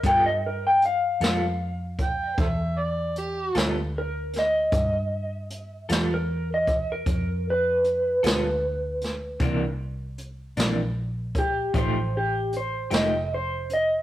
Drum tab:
HH |x-xx-xx-xx-x|x-xx-xx-xx-x|x-xx-xx-xx-x|
SD |---o-----o-o|---o-----o-o|---o-----o--|
BD |o----oo-----|o----oo-----|o----oo-----|